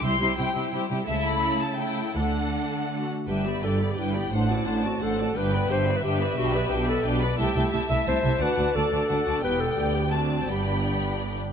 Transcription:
<<
  \new Staff \with { instrumentName = "Violin section" } { \time 3/4 \key g \major \tempo 4 = 173 c'''4 g''4 r4 | e''8 b''4 a''8 g''4 | fis''2~ fis''8 r8 | e''4 d''4 g''4 |
fis''4 a''4 fis''4 | g''4 e''2~ | e''2 d''4 | g''4 e''2 |
fis''4 d''4 fis''4 | g''2 a''4 | b''2~ b''8 r8 | }
  \new Staff \with { instrumentName = "Violin section" } { \time 3/4 \key g \major <g' c''>8 <g' c''>8 <g' c''>8 <g' c''>8 <g' c''>8 <g' c''>8 | <e' a'>2 <e' a'>4 | a'2~ a'8 r8 | <b' g''>8 <d'' b''>8 <b' g''>8 <d'' b''>8 <b' g''>8 <d'' b''>8 |
<c'' fis''>8 <d'' a''>8 <c'' fis''>8 <d'' a''>8 <c'' fis''>8 <d'' a''>8 | <b' g''>8 <d'' b''>8 <b' g''>8 <d'' b''>8 <b' g''>8 <d'' b''>8 | <b' g''>8 <d'' b''>8 <b' g''>8 <d'' b''>8 <b' g''>8 <d'' b''>8 | <e'' a''>8 <e'' a''>8 <e'' a''>8 <e'' a''>8 <e'' a''>8 <e'' a''>8 |
<d'' a''>8 <d'' a''>8 <d'' a''>8 <d'' a''>8 <d'' a''>8 <d'' a''>8 | g''4 <d'' g''>4 <d'' a''>4 | <d'' g''>2~ <d'' g''>8 r8 | }
  \new Staff \with { instrumentName = "Clarinet" } { \time 3/4 \key g \major r2. | r2. | r2 fis'4 | g'4 a'8. g'16 e'4 |
d'8 e'4 fis'8 a'4 | b'4 c''8. b'16 g'4 | fis'8 g'4 a'8 r4 | g'4. e''8 c''4 |
b'4 a'2 | b'8 a'4 g'8 fis'4 | g'2 r4 | }
  \new Staff \with { instrumentName = "Viola section" } { \time 3/4 \key g \major <g e'>8 <g e'>8 <g e'>8 <g e'>8 <g e'>8 <g e'>8 | <a e'>2 <a e'>4 | <a d'>2~ <a d'>8 r8 | <g d'>8 <b g'>8 <g d'>8 <b g'>8 <g d'>8 <b g'>8 |
<a d'>8 <c' fis'>8 <a d'>8 <c' fis'>8 <a d'>8 <c' fis'>8 | <d' g'>8 <b b'>8 <d' g'>8 <b b'>8 <d' g'>8 <b b'>8 | <d' g'>8 <b b'>8 <d' g'>8 <b b'>8 <d' g'>8 <b b'>8 | <a e'>8 <a e'>8 <a e'>8 <a e'>8 <a e'>8 <a e'>8 |
<d' fis'>8 <d' fis'>8 <d' fis'>8 <d' fis'>8 <d' fis'>8 <d' fis'>8 | <b g'>4 <b g'>4 <c' d'>4 | <b d'>2~ <b d'>8 r8 | }
  \new Staff \with { instrumentName = "Cello section" } { \clef bass \time 3/4 \key g \major c8 c8 c8 c8 c8 c8 | cis2. | d2~ d8 r8 | g,4 g,4 g,4 |
a,4 a,4 a,4 | g,4 g,4 g,4 | b,4 b,4 b,4 | c8 c8 c8 c8 c8 c8 |
d,8 d,8 d,8 d,8 d,8 d,8 | e,4 d,2 | g,2~ g,8 r8 | }
  \new Staff \with { instrumentName = "Double bass section" } { \clef bass \time 3/4 \key g \major c,8 r2 r8 | cis,4 r2 | d,4 r2 | g,,4 g,,4 g,,4 |
a,,4 a,,4 a,,4 | g,,4 g,,4 g,,4 | b,,4 b,,4 b,,4 | c,8 c,8 c,8 c,8 c,8 c,8 |
d,8 d,8 d,8 d,8 d,8 d,8 | e,,4 d,2 | g,,2~ g,,8 r8 | }
>>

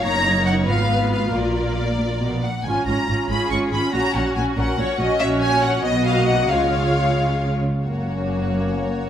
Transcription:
<<
  \new Staff \with { instrumentName = "Violin section" } { \time 6/8 \key bes \phrygian \tempo 4. = 93 bes''4 ges''8 f''4 f''8 | d''2~ d''8 ges''8 | \key fis \major gis''8 ais''4 b''8 cis'''8 b''8 | ais''8 fis''8 gis''8 fis''4 r8 |
e''8 gis''8 fis''8 dis''8 eis''8 fis''8 | cis''2~ cis''8 r8 | cis''2. | }
  \new Staff \with { instrumentName = "Violin section" } { \time 6/8 \key bes \phrygian des''4. ces''4. | bes'2~ bes'16 r8. | \key fis \major r4. gis'4. | fis'4. ais'8 cis''8 dis''8 |
cis''4. dis''4. | eis''2~ eis''16 r8. | fis'2. | }
  \new Staff \with { instrumentName = "Viola section" } { \time 6/8 \key bes \phrygian << { ees'4. f'4.~ | f'2~ f'8 r8 | \key fis \major eis'8 eis'8 eis'8 eis'8 eis'8 eis'8 | fis'8 fis'8 fis'8 fis'8 fis'8 fis'8 |
fis'4. fis'4. | eis'2~ eis'8 r8 | r2. | } \\ { bes4. ces'4. | bes2~ bes8 r8 | cis'8 cis'8 cis'8 cis'8 cis'8 cis'8 | cis'8 cis'8 cis'8 cis'8 cis'8 cis'8 |
cis'4. b8. ais8. | gis2~ gis8 r8 | ais2. | } >> }
  \new Staff \with { instrumentName = "French horn section" } { \time 6/8 \key bes \phrygian r2. | r2. | \key fis \major r2. | r2. |
r2. | r2. | <ais cis'>2. | }
  \new Staff \with { instrumentName = "Cello section" } { \clef bass \time 6/8 \key bes \phrygian ges,4. aes,4. | bes,4. bes,8 ces8 bes,8 | \key fis \major gis,8 gis,8 gis,8 gis,8 gis,8 gis,8 | ais,8 ais,8 ais,8 ais,8 ais,8 ais,8 |
ais,4. b,4. | cis2~ cis8 r8 | fis,2. | }
  \new Staff \with { instrumentName = "Double bass section" } { \clef bass \time 6/8 \key bes \phrygian ges,,4. aes,,4. | bes,,2~ bes,,8 r8 | \key fis \major gis,,8 gis,,8 gis,,8 gis,,8 gis,,8 gis,,8 | ais,,8 ais,,8 ais,,8 ais,,8 ais,,8 ais,,8 |
ais,,4. b,,4. | cis,2~ cis,8 r8 | fis,,2. | }
>>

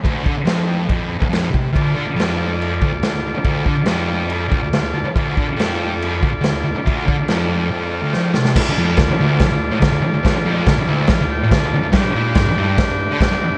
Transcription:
<<
  \new Staff \with { instrumentName = "Transistor combo organ" } { \time 4/4 \key d \minor \tempo 4 = 141 << { r1 | r1 | r2. f''8 a''8 | r1 |
r2 r8 f''8 g''8 a''8 | r1 | r4. e''8 f''8 g''8 a''4 | r1 | } \\ { r1 | <f' a' d''>1~ | <f' a' d''>1 | <f' a' d''>1~ |
<f' a' d''>1 | <f' a' d''>1~ | <f' a' d''>1 | <d' g' d''>1 | } >> }
  \new Staff \with { instrumentName = "Distorted electric guitar" } { \clef bass \time 4/4 \key d \minor d,8 d16 r16 f,4 f,8. d,16 f,8 c8 | d,8 d16 r16 f,4. d,16 d,16 d,8 d,16 r16 | d,8 d16 r16 f,4. d,16 d,16 d,8 d,16 r16 | d,8 d16 r16 f,4. d,16 d,16 d,8 d,16 r16 |
d,8 d16 r16 f,4 f,8. d,16 f,8 c8 | d,16 r16 f,8 d,16 r16 d,8 r16 d,8 a,16 d,16 d,16 r16 d,16 | d,16 r16 f,8 d,16 r16 d,8 r16 d,8 a,16 d,16 d,16 r16 d,16 | g,16 r16 bes,8 g,16 r16 g,8 r16 g,8 d16 g,16 g,16 r16 g,16 | }
  \new DrumStaff \with { instrumentName = "Drums" } \drummode { \time 4/4 <cymc bd>8 bd8 <cymc sn>4 <cymc bd>8. bd16 <cymc sn>8 bd8 | <cymc bd>4 <cymc sn>4 cymc8 bd8 <cymc sn>4 | <cymc bd>8 bd8 <cymc sn>4 cymc8 bd8 <cymc sn>4 | <cymc bd>8 bd8 <cymc sn>4 cymc8 bd8 <cymc sn>4 |
<cymc bd>8 bd8 <cymc sn>4 r4 sn8 sn16 sn16 | <cymc bd sn>4 <cymc bd sn>4 <cymc bd sn>4 <cymc bd sn>4 | <cymc bd sn>4 <cymc bd sn>4 <cymc bd sn>4 <cymc bd sn>4 | <cymc bd sn>4 <cymc bd sn>4 <cymc bd sn>4 <cymc bd sn>4 | }
>>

